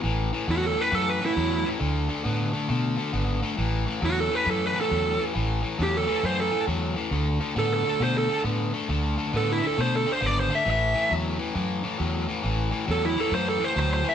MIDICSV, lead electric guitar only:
0, 0, Header, 1, 2, 480
1, 0, Start_track
1, 0, Tempo, 442804
1, 50, Time_signature, 4, 2, 24, 8
1, 15335, End_track
2, 0, Start_track
2, 0, Title_t, "Lead electric guitar"
2, 0, Program_c, 0, 29
2, 553, Note_on_c, 0, 66, 86
2, 696, Note_off_c, 0, 66, 0
2, 720, Note_on_c, 0, 69, 70
2, 879, Note_off_c, 0, 69, 0
2, 879, Note_on_c, 0, 71, 70
2, 1028, Note_off_c, 0, 71, 0
2, 1028, Note_on_c, 0, 69, 70
2, 1186, Note_off_c, 0, 69, 0
2, 1186, Note_on_c, 0, 71, 74
2, 1332, Note_off_c, 0, 71, 0
2, 1360, Note_on_c, 0, 64, 77
2, 1810, Note_off_c, 0, 64, 0
2, 4394, Note_on_c, 0, 66, 79
2, 4536, Note_off_c, 0, 66, 0
2, 4556, Note_on_c, 0, 69, 77
2, 4718, Note_off_c, 0, 69, 0
2, 4718, Note_on_c, 0, 71, 75
2, 4858, Note_off_c, 0, 71, 0
2, 4885, Note_on_c, 0, 69, 75
2, 5051, Note_off_c, 0, 69, 0
2, 5051, Note_on_c, 0, 71, 80
2, 5184, Note_off_c, 0, 71, 0
2, 5214, Note_on_c, 0, 69, 75
2, 5656, Note_off_c, 0, 69, 0
2, 6317, Note_on_c, 0, 67, 86
2, 6457, Note_off_c, 0, 67, 0
2, 6474, Note_on_c, 0, 69, 81
2, 6771, Note_off_c, 0, 69, 0
2, 6787, Note_on_c, 0, 72, 73
2, 6931, Note_off_c, 0, 72, 0
2, 6950, Note_on_c, 0, 69, 84
2, 7195, Note_off_c, 0, 69, 0
2, 8225, Note_on_c, 0, 69, 84
2, 8370, Note_off_c, 0, 69, 0
2, 8384, Note_on_c, 0, 69, 84
2, 8685, Note_off_c, 0, 69, 0
2, 8708, Note_on_c, 0, 72, 81
2, 8852, Note_off_c, 0, 72, 0
2, 8866, Note_on_c, 0, 69, 91
2, 9113, Note_off_c, 0, 69, 0
2, 10155, Note_on_c, 0, 69, 93
2, 10296, Note_off_c, 0, 69, 0
2, 10323, Note_on_c, 0, 64, 84
2, 10460, Note_off_c, 0, 64, 0
2, 10478, Note_on_c, 0, 69, 75
2, 10617, Note_off_c, 0, 69, 0
2, 10640, Note_on_c, 0, 72, 82
2, 10779, Note_off_c, 0, 72, 0
2, 10804, Note_on_c, 0, 69, 82
2, 10970, Note_off_c, 0, 69, 0
2, 10970, Note_on_c, 0, 72, 75
2, 11124, Note_off_c, 0, 72, 0
2, 11124, Note_on_c, 0, 74, 81
2, 11260, Note_off_c, 0, 74, 0
2, 11278, Note_on_c, 0, 72, 66
2, 11417, Note_off_c, 0, 72, 0
2, 11436, Note_on_c, 0, 76, 82
2, 11577, Note_off_c, 0, 76, 0
2, 11602, Note_on_c, 0, 76, 84
2, 12050, Note_off_c, 0, 76, 0
2, 13997, Note_on_c, 0, 69, 95
2, 14137, Note_off_c, 0, 69, 0
2, 14146, Note_on_c, 0, 64, 77
2, 14291, Note_off_c, 0, 64, 0
2, 14311, Note_on_c, 0, 69, 72
2, 14454, Note_off_c, 0, 69, 0
2, 14469, Note_on_c, 0, 72, 80
2, 14613, Note_off_c, 0, 72, 0
2, 14628, Note_on_c, 0, 69, 80
2, 14790, Note_off_c, 0, 69, 0
2, 14790, Note_on_c, 0, 72, 75
2, 14934, Note_off_c, 0, 72, 0
2, 14952, Note_on_c, 0, 72, 82
2, 15095, Note_off_c, 0, 72, 0
2, 15110, Note_on_c, 0, 72, 69
2, 15254, Note_off_c, 0, 72, 0
2, 15273, Note_on_c, 0, 76, 77
2, 15335, Note_off_c, 0, 76, 0
2, 15335, End_track
0, 0, End_of_file